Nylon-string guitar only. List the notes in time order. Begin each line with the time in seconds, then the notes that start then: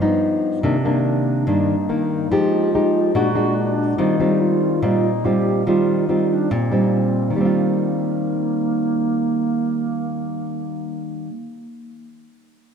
Already playing: G2
0.01 F3 B3 D#4
0.63 C3 D#3 A#3 D4
0.85 D#3 A#3 D4
1.47 G2 D#3 A#3 D4
1.89 D#3 A#3
2.32 F3 G#3 D#4 G4
2.74 G#3 D#4 G4
3.15 A#2 G#3 D4 F#4
3.35 G#3 D4 F#4
3.98 D#3 G3 C4 F4
4.20 G3 C4 F4
4.82 A#2 G3 C4 F4
5.25 G3 C4 F4
5.67 D#3 G3 C4 F4
6.09 G3 C4 F4
6.51 A#2
6.72 G3 C4 F4
7.30 D#3
7.36 G3
7.41 C4
7.45 F4